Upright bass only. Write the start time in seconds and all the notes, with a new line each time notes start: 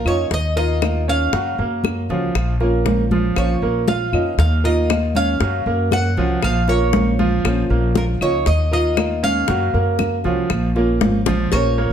0.05 F2
0.31 D#2
1.33 F#2
1.59 F#2
2.09 C#2
2.35 A#1
3.36 A#1
3.62 A#1
4.13 F2
4.38 D#2
5.40 F#2
5.66 F#2
6.17 C2
6.43 A#1
7.44 A#1
7.70 A#1
8.21 C#2
8.47 D#2
9.48 F#2
9.74 F#2
10.25 C2
10.50 A#1
11.01 G#1
11.27 A#1
11.52 A#1